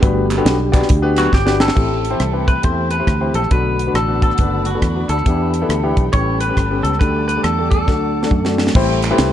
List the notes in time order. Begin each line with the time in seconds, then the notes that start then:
Already playing: D4 G4
0.02 G1 G2 A3 B3 D4 F#4 G4 B4, kick, closed hi-hat
0.31 clap, closed hi-hat
0.37 B3 D4 F#4 G4 A4
0.45 B1, snare, closed hi-hat
0.72 B3 D4 F#4 G4 D5, kick, clap, closed hi-hat
0.82 snare
0.89 D2, kick, closed hi-hat
1.02 B3 D4 F#4 G4 B4
1.16 F#3 A3 B3 F#4, clap, closed hi-hat
1.32 G1 G4, kick, snare
1.45 B3 D4 F#4 G4 B4, snare
1.60 A4, snare, clap
1.68 snare
1.75 A1 A2 E3 A3 C4 E4 G4 A4 E5 G5 A5, kick, crash
2.05 closed hi-hat
2.10 C4 E4 G4 C5
2.20 C2, cross-stick, closed hi-hat
2.33 C4 E4 G4 B4
2.48 B4, kick, closed hi-hat
2.63 E2 C4 E4 G4 A4 C5, kick, closed hi-hat
2.91 B4, closed hi-hat
3.00 C4 E4 G4 C5
3.07 D2, kick, cross-stick, closed hi-hat
3.21 C4 E4 G4 C5
3.34 A#1 A4, closed hi-hat
3.43 cross-stick
3.51 B1 B2 D3 A3 B3 D4 F#4 A4 B4 D5 F#5 A5 B5, kick, closed hi-hat
3.79 closed hi-hat
3.87 B3 D4 F#4 B4
3.94 A1 A4, cross-stick, closed hi-hat
4.08 B3 D4 F#4 B4
4.22 A4, kick, closed hi-hat
4.30 cross-stick
4.38 F#1 B3 D4 F#4 B4, kick, closed hi-hat
4.65 F#4, closed hi-hat
4.74 B3 D4 F#4 A4
4.82 E2, kick, cross-stick, closed hi-hat
4.96 B3 D4 F#4 B4
5.09 D2 A4, closed hi-hat
5.18 cross-stick
5.26 E2 E3 B3 D4 E4 G4 E5 G5, kick, closed hi-hat
5.54 closed hi-hat
5.62 B3 D4 E4 A4
5.69 D2, cross-stick, closed hi-hat
5.83 B3 D4 E4 G4
5.97 B1, kick, closed hi-hat
6.13 A1 A2 G3 B3 C#4 G4 A4 C#5 A5 B5, kick, closed hi-hat
6.41 B4, closed hi-hat
6.49 B3 C#4 G4 B4
6.57 G1, kick, cross-stick, closed hi-hat
6.70 B3 C#4 G4 A4
6.83 C#2 A4, closed hi-hat
6.93 cross-stick
6.99 D2 D3 A3 D4 G4 A4 B4 D5 D6, kick, closed hi-hat
7.28 B4, closed hi-hat
7.37 A3 D4 G4 A4
7.43 E2 A4, cross-stick, closed hi-hat
7.58 A3 D4 G4 A4
7.71 A4, kick, closed hi-hat
7.88 D2 D3 F#3 A3 D4 F#4 A4 F#5, kick, snare
8.22 A3 D4 F#4 A4, snare
8.31 F#2, kick
8.45 A3 D4 F#4 A4, snare
8.58 snare
8.67 snare
8.75 A1 A2 G3 C4 E4 G4 A4 C5, kick, crash
9.03 clap, closed hi-hat
9.10 C4 E4 G4 A4 B4
9.18 C2, snare, closed hi-hat